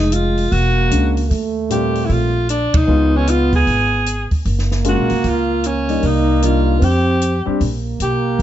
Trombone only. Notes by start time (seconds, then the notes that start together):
Already playing: G#3
0.52 A#3
1.30 A3
2.88 B3
4.45 A#3
6.04 A#3
6.81 C4
7.60 A#3